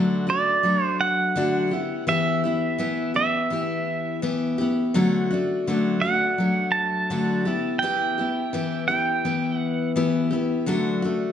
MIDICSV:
0, 0, Header, 1, 3, 480
1, 0, Start_track
1, 0, Tempo, 715990
1, 1394, Time_signature, 4, 2, 24, 8
1, 7589, End_track
2, 0, Start_track
2, 0, Title_t, "Pedal steel guitar"
2, 0, Program_c, 0, 26
2, 200, Note_on_c, 0, 74, 83
2, 562, Note_off_c, 0, 74, 0
2, 562, Note_on_c, 0, 72, 83
2, 674, Note_on_c, 0, 78, 99
2, 691, Note_off_c, 0, 72, 0
2, 1369, Note_off_c, 0, 78, 0
2, 1399, Note_on_c, 0, 76, 95
2, 2092, Note_off_c, 0, 76, 0
2, 2120, Note_on_c, 0, 76, 72
2, 2812, Note_off_c, 0, 76, 0
2, 4032, Note_on_c, 0, 78, 85
2, 4503, Note_on_c, 0, 81, 100
2, 4530, Note_off_c, 0, 78, 0
2, 5220, Note_off_c, 0, 81, 0
2, 5222, Note_on_c, 0, 79, 92
2, 5922, Note_off_c, 0, 79, 0
2, 5951, Note_on_c, 0, 79, 75
2, 6414, Note_off_c, 0, 79, 0
2, 6414, Note_on_c, 0, 78, 75
2, 6646, Note_off_c, 0, 78, 0
2, 7589, End_track
3, 0, Start_track
3, 0, Title_t, "Steel-string acoustic guitar"
3, 0, Program_c, 1, 25
3, 0, Note_on_c, 1, 50, 77
3, 0, Note_on_c, 1, 54, 75
3, 0, Note_on_c, 1, 57, 84
3, 0, Note_on_c, 1, 62, 78
3, 0, Note_on_c, 1, 66, 92
3, 171, Note_off_c, 1, 66, 0
3, 179, Note_on_c, 1, 66, 54
3, 181, Note_off_c, 1, 62, 0
3, 189, Note_on_c, 1, 62, 45
3, 190, Note_off_c, 1, 50, 0
3, 190, Note_off_c, 1, 57, 0
3, 191, Note_off_c, 1, 54, 0
3, 198, Note_on_c, 1, 57, 43
3, 422, Note_off_c, 1, 57, 0
3, 424, Note_on_c, 1, 54, 56
3, 425, Note_off_c, 1, 66, 0
3, 427, Note_off_c, 1, 62, 0
3, 430, Note_on_c, 1, 57, 56
3, 435, Note_on_c, 1, 62, 57
3, 439, Note_on_c, 1, 66, 57
3, 904, Note_off_c, 1, 54, 0
3, 909, Note_off_c, 1, 57, 0
3, 909, Note_on_c, 1, 50, 67
3, 910, Note_off_c, 1, 62, 0
3, 912, Note_on_c, 1, 54, 70
3, 917, Note_off_c, 1, 66, 0
3, 917, Note_on_c, 1, 57, 71
3, 918, Note_on_c, 1, 62, 79
3, 924, Note_on_c, 1, 66, 85
3, 1145, Note_off_c, 1, 66, 0
3, 1148, Note_on_c, 1, 67, 49
3, 1151, Note_off_c, 1, 50, 0
3, 1153, Note_off_c, 1, 54, 0
3, 1155, Note_off_c, 1, 57, 0
3, 1156, Note_off_c, 1, 62, 0
3, 1160, Note_on_c, 1, 64, 50
3, 1168, Note_on_c, 1, 59, 39
3, 1383, Note_off_c, 1, 59, 0
3, 1386, Note_on_c, 1, 52, 70
3, 1387, Note_off_c, 1, 64, 0
3, 1391, Note_off_c, 1, 67, 0
3, 1391, Note_on_c, 1, 59, 75
3, 1395, Note_on_c, 1, 64, 82
3, 1400, Note_on_c, 1, 67, 79
3, 1626, Note_off_c, 1, 67, 0
3, 1631, Note_off_c, 1, 52, 0
3, 1633, Note_off_c, 1, 59, 0
3, 1634, Note_on_c, 1, 67, 51
3, 1635, Note_off_c, 1, 64, 0
3, 1643, Note_on_c, 1, 64, 48
3, 1651, Note_on_c, 1, 59, 42
3, 1864, Note_off_c, 1, 59, 0
3, 1867, Note_on_c, 1, 52, 68
3, 1868, Note_off_c, 1, 64, 0
3, 1872, Note_off_c, 1, 67, 0
3, 1872, Note_on_c, 1, 59, 70
3, 1876, Note_on_c, 1, 64, 72
3, 1880, Note_on_c, 1, 67, 73
3, 2098, Note_off_c, 1, 67, 0
3, 2106, Note_off_c, 1, 64, 0
3, 2106, Note_on_c, 1, 67, 51
3, 2112, Note_off_c, 1, 52, 0
3, 2114, Note_on_c, 1, 64, 45
3, 2115, Note_off_c, 1, 59, 0
3, 2125, Note_on_c, 1, 59, 41
3, 2347, Note_off_c, 1, 59, 0
3, 2348, Note_on_c, 1, 52, 55
3, 2352, Note_off_c, 1, 67, 0
3, 2353, Note_off_c, 1, 64, 0
3, 2355, Note_on_c, 1, 59, 53
3, 2361, Note_on_c, 1, 64, 53
3, 2366, Note_on_c, 1, 67, 58
3, 2823, Note_off_c, 1, 52, 0
3, 2828, Note_off_c, 1, 59, 0
3, 2828, Note_off_c, 1, 64, 0
3, 2831, Note_on_c, 1, 52, 80
3, 2833, Note_off_c, 1, 67, 0
3, 2836, Note_on_c, 1, 59, 75
3, 2836, Note_on_c, 1, 64, 84
3, 2841, Note_on_c, 1, 67, 90
3, 3063, Note_off_c, 1, 67, 0
3, 3071, Note_on_c, 1, 67, 59
3, 3074, Note_off_c, 1, 52, 0
3, 3077, Note_off_c, 1, 59, 0
3, 3077, Note_off_c, 1, 64, 0
3, 3088, Note_on_c, 1, 64, 54
3, 3093, Note_on_c, 1, 59, 52
3, 3314, Note_on_c, 1, 50, 84
3, 3315, Note_off_c, 1, 67, 0
3, 3317, Note_on_c, 1, 54, 93
3, 3319, Note_off_c, 1, 59, 0
3, 3320, Note_off_c, 1, 64, 0
3, 3321, Note_on_c, 1, 57, 86
3, 3322, Note_on_c, 1, 62, 95
3, 3330, Note_on_c, 1, 66, 96
3, 3549, Note_off_c, 1, 66, 0
3, 3556, Note_off_c, 1, 50, 0
3, 3557, Note_on_c, 1, 66, 58
3, 3558, Note_off_c, 1, 54, 0
3, 3560, Note_off_c, 1, 57, 0
3, 3560, Note_off_c, 1, 62, 0
3, 3571, Note_on_c, 1, 62, 46
3, 3579, Note_on_c, 1, 57, 50
3, 3798, Note_off_c, 1, 66, 0
3, 3800, Note_off_c, 1, 57, 0
3, 3804, Note_on_c, 1, 50, 77
3, 3805, Note_off_c, 1, 62, 0
3, 3806, Note_on_c, 1, 54, 78
3, 3808, Note_on_c, 1, 57, 78
3, 3813, Note_on_c, 1, 62, 82
3, 3819, Note_on_c, 1, 66, 84
3, 4033, Note_off_c, 1, 66, 0
3, 4041, Note_off_c, 1, 50, 0
3, 4041, Note_on_c, 1, 66, 55
3, 4042, Note_off_c, 1, 54, 0
3, 4043, Note_off_c, 1, 57, 0
3, 4046, Note_off_c, 1, 62, 0
3, 4054, Note_on_c, 1, 62, 44
3, 4061, Note_on_c, 1, 57, 42
3, 4277, Note_on_c, 1, 54, 57
3, 4280, Note_off_c, 1, 66, 0
3, 4281, Note_off_c, 1, 57, 0
3, 4286, Note_off_c, 1, 62, 0
3, 4289, Note_on_c, 1, 57, 57
3, 4294, Note_on_c, 1, 62, 57
3, 4296, Note_on_c, 1, 66, 57
3, 4758, Note_off_c, 1, 54, 0
3, 4760, Note_off_c, 1, 57, 0
3, 4761, Note_on_c, 1, 50, 73
3, 4763, Note_off_c, 1, 62, 0
3, 4765, Note_on_c, 1, 54, 72
3, 4766, Note_off_c, 1, 66, 0
3, 4768, Note_on_c, 1, 57, 73
3, 4771, Note_on_c, 1, 62, 81
3, 4774, Note_on_c, 1, 66, 77
3, 4994, Note_off_c, 1, 66, 0
3, 4996, Note_on_c, 1, 67, 51
3, 4999, Note_off_c, 1, 50, 0
3, 5001, Note_off_c, 1, 54, 0
3, 5003, Note_off_c, 1, 57, 0
3, 5004, Note_off_c, 1, 62, 0
3, 5007, Note_on_c, 1, 64, 45
3, 5011, Note_on_c, 1, 59, 45
3, 5237, Note_off_c, 1, 67, 0
3, 5240, Note_off_c, 1, 59, 0
3, 5243, Note_off_c, 1, 64, 0
3, 5244, Note_on_c, 1, 52, 81
3, 5248, Note_on_c, 1, 59, 79
3, 5253, Note_on_c, 1, 64, 87
3, 5256, Note_on_c, 1, 67, 88
3, 5474, Note_off_c, 1, 67, 0
3, 5481, Note_off_c, 1, 52, 0
3, 5482, Note_on_c, 1, 67, 48
3, 5483, Note_off_c, 1, 59, 0
3, 5483, Note_off_c, 1, 64, 0
3, 5491, Note_on_c, 1, 64, 46
3, 5502, Note_on_c, 1, 59, 42
3, 5717, Note_off_c, 1, 59, 0
3, 5718, Note_off_c, 1, 64, 0
3, 5718, Note_on_c, 1, 52, 72
3, 5720, Note_off_c, 1, 67, 0
3, 5725, Note_on_c, 1, 59, 81
3, 5726, Note_on_c, 1, 64, 83
3, 5732, Note_on_c, 1, 67, 74
3, 5948, Note_off_c, 1, 67, 0
3, 5956, Note_off_c, 1, 64, 0
3, 5956, Note_on_c, 1, 67, 53
3, 5957, Note_off_c, 1, 52, 0
3, 5961, Note_off_c, 1, 59, 0
3, 5964, Note_on_c, 1, 64, 47
3, 5973, Note_on_c, 1, 59, 42
3, 6192, Note_off_c, 1, 59, 0
3, 6196, Note_off_c, 1, 67, 0
3, 6200, Note_off_c, 1, 64, 0
3, 6200, Note_on_c, 1, 52, 53
3, 6200, Note_on_c, 1, 59, 63
3, 6209, Note_on_c, 1, 64, 61
3, 6217, Note_on_c, 1, 67, 60
3, 6667, Note_off_c, 1, 52, 0
3, 6672, Note_off_c, 1, 59, 0
3, 6674, Note_off_c, 1, 64, 0
3, 6675, Note_off_c, 1, 67, 0
3, 6675, Note_on_c, 1, 52, 76
3, 6680, Note_on_c, 1, 59, 90
3, 6682, Note_on_c, 1, 64, 86
3, 6683, Note_on_c, 1, 67, 83
3, 6901, Note_off_c, 1, 67, 0
3, 6909, Note_on_c, 1, 67, 59
3, 6912, Note_off_c, 1, 64, 0
3, 6915, Note_off_c, 1, 52, 0
3, 6917, Note_off_c, 1, 59, 0
3, 6920, Note_on_c, 1, 64, 51
3, 6926, Note_on_c, 1, 59, 47
3, 7149, Note_on_c, 1, 50, 82
3, 7151, Note_off_c, 1, 67, 0
3, 7153, Note_on_c, 1, 54, 88
3, 7155, Note_off_c, 1, 64, 0
3, 7156, Note_off_c, 1, 59, 0
3, 7158, Note_on_c, 1, 62, 90
3, 7159, Note_on_c, 1, 57, 92
3, 7165, Note_on_c, 1, 66, 94
3, 7382, Note_off_c, 1, 66, 0
3, 7390, Note_on_c, 1, 66, 62
3, 7391, Note_off_c, 1, 50, 0
3, 7393, Note_off_c, 1, 54, 0
3, 7396, Note_off_c, 1, 57, 0
3, 7396, Note_off_c, 1, 62, 0
3, 7405, Note_on_c, 1, 62, 52
3, 7410, Note_on_c, 1, 57, 50
3, 7589, Note_off_c, 1, 57, 0
3, 7589, Note_off_c, 1, 62, 0
3, 7589, Note_off_c, 1, 66, 0
3, 7589, End_track
0, 0, End_of_file